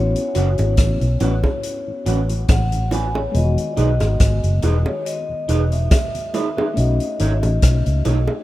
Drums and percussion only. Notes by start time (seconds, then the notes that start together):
0.16 closed hi-hat
0.35 closed hi-hat
0.58 closed hi-hat, high bongo
0.77 kick, cross-stick, closed hi-hat
1.01 closed hi-hat
1.20 closed hi-hat, low bongo
1.44 kick, high bongo
1.63 closed hi-hat
2.06 closed hi-hat
2.29 closed hi-hat
2.48 kick, cross-stick, closed hi-hat, high bongo
2.72 closed hi-hat
2.91 closed hi-hat, low bongo
3.15 high bongo
3.34 closed hi-hat
3.58 closed hi-hat
3.77 closed hi-hat
4.00 cross-stick, closed hi-hat, high bongo
4.20 kick, cross-stick, closed hi-hat
4.43 closed hi-hat
4.62 closed hi-hat, low bongo
4.86 high bongo
5.06 closed hi-hat
5.49 closed hi-hat
5.72 closed hi-hat
5.91 kick, cross-stick, closed hi-hat, high bongo
6.15 closed hi-hat
6.34 closed hi-hat, low bongo
6.58 high bongo
6.77 closed hi-hat
7.00 closed hi-hat
7.19 closed hi-hat
7.43 closed hi-hat, high bongo
7.62 kick, cross-stick, closed hi-hat
7.86 closed hi-hat
8.05 closed hi-hat, high bongo, low bongo
8.28 high bongo